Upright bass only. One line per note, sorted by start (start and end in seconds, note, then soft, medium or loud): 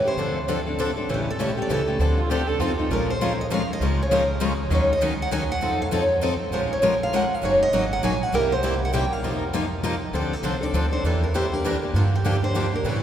0.16 0.90 D2 medium
1.08 1.32 A1 medium
1.38 1.64 A#1 medium
1.69 1.95 C#2 medium
1.99 2.48 D2 medium
2.59 2.84 F2 medium
2.89 3.62 A#1 medium
3.80 4.53 C#2 medium
4.70 5.43 D#2 medium
5.61 6.33 F2 medium
6.51 7.24 A#1 medium
7.42 7.66 F#1 medium
7.72 7.98 G#1 medium
8.02 8.28 A#1 medium
8.33 9.05 C2 medium
9.23 9.95 F2 medium
10.13 10.37 D2 medium
10.43 10.69 C2 medium
10.73 10.99 D2 medium
11.03 11.76 E2 medium
11.94 12.66 G2 medium
12.84 13.03 A2 medium